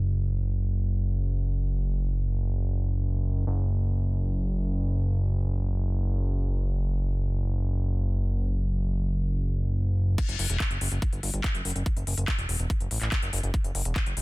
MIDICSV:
0, 0, Header, 1, 3, 480
1, 0, Start_track
1, 0, Tempo, 419580
1, 129, Time_signature, 4, 2, 24, 8
1, 16265, End_track
2, 0, Start_track
2, 0, Title_t, "Analog synth bass"
2, 0, Program_c, 0, 38
2, 0, Note_on_c, 0, 30, 86
2, 3945, Note_off_c, 0, 30, 0
2, 3968, Note_on_c, 0, 30, 88
2, 11625, Note_off_c, 0, 30, 0
2, 11769, Note_on_c, 0, 30, 89
2, 11852, Note_off_c, 0, 30, 0
2, 11888, Note_on_c, 0, 30, 103
2, 11972, Note_off_c, 0, 30, 0
2, 12008, Note_on_c, 0, 28, 90
2, 12092, Note_off_c, 0, 28, 0
2, 12248, Note_on_c, 0, 30, 84
2, 12332, Note_off_c, 0, 30, 0
2, 12369, Note_on_c, 0, 30, 103
2, 12452, Note_off_c, 0, 30, 0
2, 12488, Note_on_c, 0, 30, 96
2, 12572, Note_off_c, 0, 30, 0
2, 12729, Note_on_c, 0, 31, 86
2, 12812, Note_off_c, 0, 31, 0
2, 12848, Note_on_c, 0, 31, 102
2, 12932, Note_off_c, 0, 31, 0
2, 12969, Note_on_c, 0, 31, 95
2, 13052, Note_off_c, 0, 31, 0
2, 13209, Note_on_c, 0, 30, 85
2, 13292, Note_off_c, 0, 30, 0
2, 13329, Note_on_c, 0, 30, 102
2, 13412, Note_off_c, 0, 30, 0
2, 13449, Note_on_c, 0, 30, 90
2, 13532, Note_off_c, 0, 30, 0
2, 13689, Note_on_c, 0, 30, 90
2, 13772, Note_off_c, 0, 30, 0
2, 13809, Note_on_c, 0, 30, 100
2, 13892, Note_off_c, 0, 30, 0
2, 13929, Note_on_c, 0, 30, 91
2, 14012, Note_off_c, 0, 30, 0
2, 14169, Note_on_c, 0, 28, 85
2, 14252, Note_off_c, 0, 28, 0
2, 14289, Note_on_c, 0, 28, 103
2, 14372, Note_off_c, 0, 28, 0
2, 14409, Note_on_c, 0, 28, 94
2, 14492, Note_off_c, 0, 28, 0
2, 14649, Note_on_c, 0, 30, 88
2, 14732, Note_off_c, 0, 30, 0
2, 14769, Note_on_c, 0, 33, 101
2, 14852, Note_off_c, 0, 33, 0
2, 14889, Note_on_c, 0, 33, 94
2, 14972, Note_off_c, 0, 33, 0
2, 15129, Note_on_c, 0, 30, 85
2, 15212, Note_off_c, 0, 30, 0
2, 15249, Note_on_c, 0, 30, 99
2, 15332, Note_off_c, 0, 30, 0
2, 15369, Note_on_c, 0, 30, 93
2, 15452, Note_off_c, 0, 30, 0
2, 15609, Note_on_c, 0, 30, 90
2, 15692, Note_off_c, 0, 30, 0
2, 15729, Note_on_c, 0, 30, 99
2, 15812, Note_off_c, 0, 30, 0
2, 15849, Note_on_c, 0, 28, 91
2, 15932, Note_off_c, 0, 28, 0
2, 16089, Note_on_c, 0, 30, 85
2, 16172, Note_off_c, 0, 30, 0
2, 16209, Note_on_c, 0, 30, 99
2, 16265, Note_off_c, 0, 30, 0
2, 16265, End_track
3, 0, Start_track
3, 0, Title_t, "Drums"
3, 11648, Note_on_c, 9, 36, 120
3, 11649, Note_on_c, 9, 42, 80
3, 11649, Note_on_c, 9, 49, 103
3, 11763, Note_off_c, 9, 36, 0
3, 11763, Note_off_c, 9, 42, 0
3, 11763, Note_off_c, 9, 49, 0
3, 11769, Note_on_c, 9, 42, 57
3, 11883, Note_off_c, 9, 42, 0
3, 11888, Note_on_c, 9, 46, 106
3, 12003, Note_off_c, 9, 46, 0
3, 12009, Note_on_c, 9, 42, 83
3, 12123, Note_off_c, 9, 42, 0
3, 12128, Note_on_c, 9, 36, 120
3, 12129, Note_on_c, 9, 39, 127
3, 12129, Note_on_c, 9, 42, 55
3, 12243, Note_off_c, 9, 36, 0
3, 12243, Note_off_c, 9, 39, 0
3, 12243, Note_off_c, 9, 42, 0
3, 12249, Note_on_c, 9, 42, 55
3, 12363, Note_off_c, 9, 42, 0
3, 12369, Note_on_c, 9, 46, 109
3, 12483, Note_off_c, 9, 46, 0
3, 12489, Note_on_c, 9, 42, 55
3, 12603, Note_off_c, 9, 42, 0
3, 12608, Note_on_c, 9, 36, 120
3, 12609, Note_on_c, 9, 42, 86
3, 12723, Note_off_c, 9, 36, 0
3, 12723, Note_off_c, 9, 42, 0
3, 12729, Note_on_c, 9, 42, 56
3, 12843, Note_off_c, 9, 42, 0
3, 12849, Note_on_c, 9, 46, 105
3, 12963, Note_off_c, 9, 46, 0
3, 12969, Note_on_c, 9, 42, 57
3, 13083, Note_off_c, 9, 42, 0
3, 13089, Note_on_c, 9, 36, 124
3, 13089, Note_on_c, 9, 39, 120
3, 13089, Note_on_c, 9, 42, 82
3, 13203, Note_off_c, 9, 36, 0
3, 13203, Note_off_c, 9, 39, 0
3, 13203, Note_off_c, 9, 42, 0
3, 13209, Note_on_c, 9, 42, 54
3, 13323, Note_off_c, 9, 42, 0
3, 13329, Note_on_c, 9, 46, 109
3, 13389, Note_on_c, 9, 42, 69
3, 13443, Note_off_c, 9, 46, 0
3, 13449, Note_off_c, 9, 42, 0
3, 13449, Note_on_c, 9, 42, 56
3, 13564, Note_off_c, 9, 42, 0
3, 13569, Note_on_c, 9, 36, 127
3, 13569, Note_on_c, 9, 42, 77
3, 13683, Note_off_c, 9, 36, 0
3, 13683, Note_off_c, 9, 42, 0
3, 13689, Note_on_c, 9, 42, 55
3, 13803, Note_off_c, 9, 42, 0
3, 13809, Note_on_c, 9, 46, 108
3, 13924, Note_off_c, 9, 46, 0
3, 13929, Note_on_c, 9, 42, 83
3, 14044, Note_off_c, 9, 42, 0
3, 14049, Note_on_c, 9, 36, 121
3, 14049, Note_on_c, 9, 39, 127
3, 14049, Note_on_c, 9, 42, 56
3, 14163, Note_off_c, 9, 36, 0
3, 14163, Note_off_c, 9, 39, 0
3, 14163, Note_off_c, 9, 42, 0
3, 14169, Note_on_c, 9, 42, 56
3, 14284, Note_off_c, 9, 42, 0
3, 14289, Note_on_c, 9, 46, 113
3, 14403, Note_off_c, 9, 46, 0
3, 14409, Note_on_c, 9, 42, 54
3, 14524, Note_off_c, 9, 42, 0
3, 14529, Note_on_c, 9, 36, 122
3, 14529, Note_on_c, 9, 42, 82
3, 14643, Note_off_c, 9, 36, 0
3, 14643, Note_off_c, 9, 42, 0
3, 14649, Note_on_c, 9, 42, 54
3, 14763, Note_off_c, 9, 42, 0
3, 14769, Note_on_c, 9, 46, 108
3, 14883, Note_off_c, 9, 46, 0
3, 14889, Note_on_c, 9, 39, 38
3, 14889, Note_on_c, 9, 42, 55
3, 15004, Note_off_c, 9, 39, 0
3, 15004, Note_off_c, 9, 42, 0
3, 15009, Note_on_c, 9, 36, 124
3, 15009, Note_on_c, 9, 39, 124
3, 15009, Note_on_c, 9, 42, 79
3, 15123, Note_off_c, 9, 36, 0
3, 15124, Note_off_c, 9, 39, 0
3, 15124, Note_off_c, 9, 42, 0
3, 15129, Note_on_c, 9, 42, 53
3, 15243, Note_off_c, 9, 42, 0
3, 15249, Note_on_c, 9, 46, 113
3, 15309, Note_on_c, 9, 42, 67
3, 15363, Note_off_c, 9, 46, 0
3, 15369, Note_off_c, 9, 42, 0
3, 15369, Note_on_c, 9, 42, 54
3, 15483, Note_off_c, 9, 42, 0
3, 15489, Note_on_c, 9, 36, 127
3, 15489, Note_on_c, 9, 42, 77
3, 15603, Note_off_c, 9, 36, 0
3, 15604, Note_off_c, 9, 42, 0
3, 15609, Note_on_c, 9, 42, 53
3, 15723, Note_off_c, 9, 42, 0
3, 15729, Note_on_c, 9, 46, 115
3, 15843, Note_off_c, 9, 46, 0
3, 15849, Note_on_c, 9, 42, 79
3, 15963, Note_off_c, 9, 42, 0
3, 15969, Note_on_c, 9, 36, 119
3, 15969, Note_on_c, 9, 39, 124
3, 15969, Note_on_c, 9, 42, 51
3, 16083, Note_off_c, 9, 36, 0
3, 16084, Note_off_c, 9, 39, 0
3, 16084, Note_off_c, 9, 42, 0
3, 16089, Note_on_c, 9, 42, 53
3, 16203, Note_off_c, 9, 42, 0
3, 16209, Note_on_c, 9, 46, 113
3, 16265, Note_off_c, 9, 46, 0
3, 16265, End_track
0, 0, End_of_file